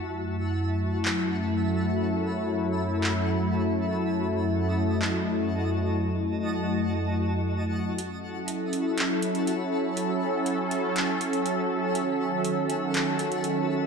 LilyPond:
<<
  \new Staff \with { instrumentName = "Synth texture" } { \time 4/4 \key fis \dorian \tempo 4 = 121 << { <fis' a''>1~ | <fis' a''>1~ | <fis' a''>1~ | <fis' a''>1 |
<fis' a''>1~ | <fis' a''>1~ | <fis' a''>1 | } \\ { e''1~ | e''1 | dis''1~ | dis''1 |
e''1~ | e''1~ | e''1 | } >> }
  \new Staff \with { instrumentName = "Analog synth pad" } { \time 4/4 \key fis \dorian << { <fis, fis e'>1~ | <fis, fis e'>1~ | <fis, fis e'>1~ | <fis, fis e'>1 |
<fis cis' a'>1~ | <fis cis' a'>1~ | <fis cis' a'>1 | } \\ { a1~ | a1~ | a1~ | a1 |
e'1~ | e'1 | dis1 | } >> }
  \new DrumStaff \with { instrumentName = "Drums" } \drummode { \time 4/4 r4 r4 hc4 r4 | r4 r4 hc4 r4 | r4 r4 hc4 r4 | r4 r4 r4 r4 |
hh4 hh8 hh8 <hc hh>8 hh16 hh16 hh4 | hh4 hh8 hh8 <hc hh>8 hh16 hh16 hh4 | hh4 hh8 hh8 <hc hh>8 hh16 hh16 hh4 | }
>>